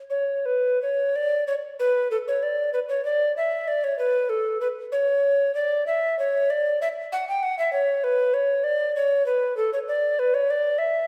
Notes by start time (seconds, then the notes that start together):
0.10 C#5
0.46 B4
0.82 C#5
1.16 D5
1.47 C#5
1.80 B4
2.11 A4
2.28 C#5
2.43 D5
2.73 B4
2.89 C#5
3.05 D5
3.37 E5
3.68 D5
3.84 C#5
3.99 B4
4.29 A4
4.61 B4
4.92 C#5
5.55 D5
5.87 E5
6.19 C#5
6.50 D5
6.81 E5
7.12 F#5
7.29 G5
7.43 F#5
7.59 E5
7.73 C#5
8.04 B4
8.34 C#5
8.64 D5
8.96 C#5
9.26 B4
9.57 A4
9.73 C#5
9.88 D5
10.19 B4
10.34 C#5
10.50 D5
10.78 E5